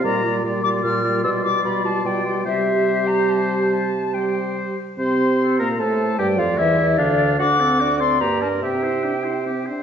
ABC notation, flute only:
X:1
M:3/4
L:1/8
Q:1/4=147
K:Cmix
V:1 name="Flute"
b3 d' f'2 | e' d' =b a g2 | e3 b a2 | a2 g2 z2 |
c'3 b a2 | g f e2 d2 | d'3 c' b a | g4- g z |]